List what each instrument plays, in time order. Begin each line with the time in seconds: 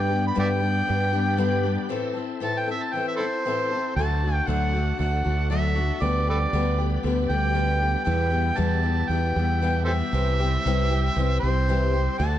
Already playing: steel-string acoustic guitar G2 D3 G3 B3, fingered electric bass G2, tonewheel organ D4 G4 B4
0.01 harmonica G5
0.09 steel-string acoustic guitar G3 B3 D4 G4
0.27 harmonica B5
0.35 steel-string acoustic guitar G2 D3 G3 B3 D4 G4, fingered electric bass G2
0.40 harmonica D5 E5 G5
0.60 steel-string acoustic guitar G3 B3 D4 G4
0.87 fingered electric bass G2, steel-string acoustic guitar G3 B3 D4 G4
1.13 steel-string acoustic guitar G3 B3 D4 G4
1.37 steel-string acoustic guitar G2 D3 G3 B3 D4 G4
1.64 steel-string acoustic guitar G3 B3 D4 G4
1.89 steel-string acoustic guitar A2 E3 C4 E4 A4, tonewheel organ E4 A4 C5
2.13 steel-string acoustic guitar C4 E4 A4
2.40 steel-string acoustic guitar A2 E3 C4 E4 A4, harmonica A5
2.59 harmonica G5
2.68 steel-string acoustic guitar C4 E4 A4, harmonica E5
2.83 harmonica A5
2.93 steel-string acoustic guitar E3 C4 E4 A4, harmonica G5
3.08 harmonica E5
3.16 harmonica E4 A4 C5, steel-string acoustic guitar A4
3.20 steel-string acoustic guitar C4 E4
3.45 steel-string acoustic guitar A2 E3 C4 E4 A4
3.71 steel-string acoustic guitar C4 E4 A4
3.94 fingered electric bass D2, tonewheel organ D4 F#4 A4, harmonica A5
3.98 steel-string acoustic guitar D3 F#3 A3 D4 F#4
4.24 steel-string acoustic guitar A3 D4 F#4
4.34 harmonica G5
4.47 fingered electric bass D2, steel-string acoustic guitar D3 F#3 A3 D4 F#4, harmonica F#5
4.73 steel-string acoustic guitar A3 D4 F#4
4.98 fingered electric bass D2, steel-string acoustic guitar F#3 A3 D4 F#4, harmonica F#5
5.24 fingered electric bass D2, steel-string acoustic guitar D4 F#4
5.29 steel-string acoustic guitar A3
5.50 steel-string acoustic guitar D3 F#3 A3 D4 F#4, harmonica E5
5.75 steel-string acoustic guitar A3 D4 F#4
6.00 fingered electric bass D2, steel-string acoustic guitar D3 G3 B3 G4, tonewheel organ D4 G4 B4, harmonica D5
6.27 steel-string acoustic guitar G3 B3 G4, harmonica A4 B4 D5
6.53 fingered electric bass D2, steel-string acoustic guitar D3 G3 B3 G4
6.78 steel-string acoustic guitar G3 B3 G4
7.03 fingered electric bass D2, steel-string acoustic guitar D3 G3 B3 G4
7.29 fingered electric bass D2, steel-string acoustic guitar G3 B3 G4, harmonica G5
7.54 steel-string acoustic guitar D3 G3 B3 G4
7.80 steel-string acoustic guitar G3 B3 G4
8.04 steel-string acoustic guitar E2 B2 E3 G3 B3 G4, fingered electric bass E2, tonewheel organ G4 B4, harmonica G5
8.08 tonewheel organ E4
8.31 steel-string acoustic guitar E3 G3 B3 G4
8.56 steel-string acoustic guitar E2 B2 E3 G3 B3 G4, fingered electric bass E2, harmonica A5
8.83 steel-string acoustic guitar E3 G3 B3 G4
9.09 fingered electric bass E2, steel-string acoustic guitar E3 G3 B3, harmonica G5
9.13 steel-string acoustic guitar G4
9.36 fingered electric bass E2, steel-string acoustic guitar E3 G3 B3 G4
9.61 steel-string acoustic guitar E2 B2 E3 G3 B3 G4
9.85 steel-string acoustic guitar G4, harmonica A4 C5 E5
9.89 steel-string acoustic guitar E3 G3 B3
10.13 fingered electric bass C2, steel-string acoustic guitar C3 E3 G3 C4 G4, tonewheel organ E4 G4 C5
10.40 steel-string acoustic guitar G3 C4 G4
10.65 fingered electric bass C2, steel-string acoustic guitar C3 E3 G3 C4 G4
10.90 steel-string acoustic guitar C4 G4
10.95 steel-string acoustic guitar G3
11.16 fingered electric bass C2, steel-string acoustic guitar E3 G3 C4 G4
11.40 fingered electric bass C2, steel-string acoustic guitar G4, harmonica C5
11.45 steel-string acoustic guitar G3 C4
11.68 steel-string acoustic guitar C3 E3 G3 C4 G4
11.94 steel-string acoustic guitar G3 C4 G4
12.18 fingered electric bass D2, steel-string acoustic guitar D3 A3 D4 F#4, tonewheel organ D4 F#4 A4, harmonica A5